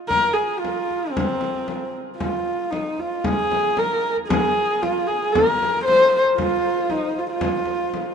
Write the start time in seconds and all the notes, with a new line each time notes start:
0.08 A#4, frame drum
0.33 G#4
0.58 F4
0.65 frame drum
0.91 frame drum
1.10 C4
1.17 frame drum
1.41 frame drum
1.55 frame drum
1.68 frame drum
2.17 F4, frame drum
2.70 D#4, frame drum
2.99 F4, frame drum
3.24 G#4, frame drum
3.52 frame drum
3.65 frame drum
3.77 A#4, frame drum
4.17 frame drum
4.28 G#4, frame drum
4.82 F4, frame drum
5.07 G#4, frame drum
5.32 A#4, frame drum
5.63 frame drum
5.76 frame drum
5.84 C5, frame drum
6.26 frame drum
6.38 F4, frame drum
6.90 D#4, frame drum
7.15 F4, frame drum
7.30 F4
7.41 frame drum
7.65 frame drum
7.81 frame drum
7.94 frame drum